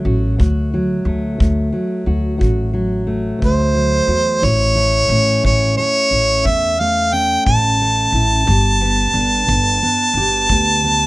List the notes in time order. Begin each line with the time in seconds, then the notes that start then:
Already playing: F#3 A3
0.05 A1 F#4
0.38 D2 F#4, kick
0.74 F#3
1.05 D2 A3
1.38 D2, kick
1.72 F#3
2.06 D2 F#4
2.38 A1 D2 F#4, kick
2.73 F#3
3.07 A3
3.39 D2, kick
3.45 C5
3.74 F#3
4.07 E2 F#4
4.42 A1 A2 E4 C#5, kick
4.75 A3
5.09 A1 C#4
5.43 A1 A2 C#5, kick
5.77 A3 C#5
6.11 A1 E4
6.45 E2 A2 E5, kick
6.80 A3 F5
7.13 C#4 G5
7.45 A1 A2 A5, kick
7.81 A3
8.12 A1 E4
8.46 G1 G2 G4, kick
8.81 B3
9.14 G1 D4
9.47 G1 G2, kick
9.82 B3
10.14 G1 G4
10.49 D2 G2 G4, kick
10.84 B3